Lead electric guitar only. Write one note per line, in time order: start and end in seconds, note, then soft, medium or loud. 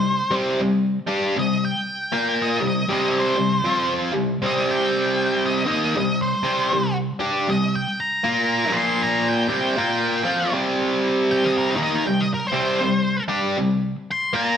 0.00 0.33 C5 medium
1.39 1.63 D#5 loud
1.65 2.38 G5 medium
2.42 2.65 D#5 medium
2.68 2.91 D#5 medium
2.93 3.16 D#5 medium
3.19 3.92 C5 medium
4.46 4.69 D#5 loud
4.71 5.44 G5 loud
5.46 5.70 D#5 medium
5.71 5.96 D#5 medium
5.97 6.21 D#5 medium
6.22 6.96 C5 medium
7.50 7.74 D#5 loud
7.75 7.99 G5 medium
8.00 8.74 A#5 medium
8.77 9.01 C6 medium
9.03 9.27 A#5 medium
9.28 9.52 G5 medium
9.54 9.78 G5 medium
9.79 10.52 G5 loud
11.31 11.46 G5 loud
11.45 11.54 D#5 medium
11.58 11.78 A#4 medium
11.71 11.77 G5 medium
11.83 11.97 D#5 medium
11.95 12.05 A#4 medium
12.07 12.22 G5 loud
12.20 12.30 D#5 loud
12.34 12.47 A#4 medium
12.47 13.23 C5 loud
14.11 14.35 C6 loud
14.35 14.57 A#5 loud